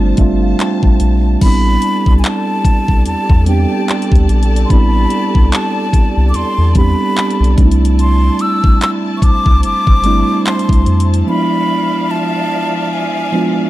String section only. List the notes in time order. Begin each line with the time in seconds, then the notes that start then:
Already playing: F3 C5 A5
1.41 G4 A4 D5 A5
7.58 E4 A5
9.22 C5
11.27 F3 D5 E5 F5